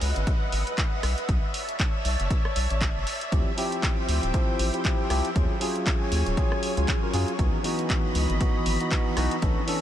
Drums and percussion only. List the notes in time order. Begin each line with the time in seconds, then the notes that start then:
0.01 open hi-hat
0.16 closed hi-hat
0.27 kick, closed hi-hat
0.52 open hi-hat
0.67 closed hi-hat
0.78 kick, clap, closed hi-hat
1.03 cross-stick, open hi-hat
1.18 closed hi-hat
1.29 kick, closed hi-hat
1.54 open hi-hat
1.69 closed hi-hat
1.80 kick, clap, closed hi-hat
2.05 open hi-hat
2.20 closed hi-hat
2.30 kick, closed hi-hat
2.45 cross-stick
2.56 open hi-hat
2.70 closed hi-hat
2.81 kick, clap, closed hi-hat
3.07 open hi-hat
3.21 closed hi-hat
3.32 kick, closed hi-hat
3.58 open hi-hat
3.72 closed hi-hat
3.83 kick, clap, closed hi-hat
4.09 open hi-hat
4.23 closed hi-hat
4.34 kick, closed hi-hat
4.59 open hi-hat
4.74 closed hi-hat
4.85 kick, clap, closed hi-hat
5.10 cross-stick, open hi-hat
5.25 closed hi-hat
5.36 kick, closed hi-hat
5.61 open hi-hat
5.76 closed hi-hat
5.86 kick, clap, closed hi-hat
6.12 open hi-hat
6.26 closed hi-hat
6.37 kick, closed hi-hat
6.52 cross-stick
6.63 open hi-hat
6.77 closed hi-hat
6.88 kick, clap, closed hi-hat
7.14 open hi-hat
7.28 closed hi-hat
7.39 kick, closed hi-hat
7.64 open hi-hat
7.79 closed hi-hat
7.90 kick, clap, closed hi-hat
8.15 open hi-hat
8.30 closed hi-hat
8.41 kick, closed hi-hat
8.66 open hi-hat
8.80 closed hi-hat
8.91 kick, clap, closed hi-hat
9.17 cross-stick, open hi-hat
9.31 closed hi-hat
9.42 kick, closed hi-hat
9.68 open hi-hat